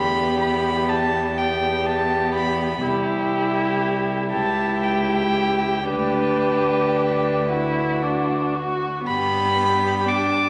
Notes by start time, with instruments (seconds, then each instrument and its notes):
Already playing: cello E2, viola B3, violin G4 B5
0.40 violin B5
0.88 violin A5
1.36 viola B3, violin G4 G5
1.86 violin A5
2.35 violin B5
2.81 cello C2, viola E4, violin G4
4.31 cello C#2, viola E4, violin G4 A5
4.83 violin G5
5.87 cello D2, viola D4, violin G4 B4
7.49 viola E4, violin F#4
8.02 viola D4
8.54 viola F#4
9.04 cello G2, viola B3, violin G4 B5
10.05 viola D4, violin D6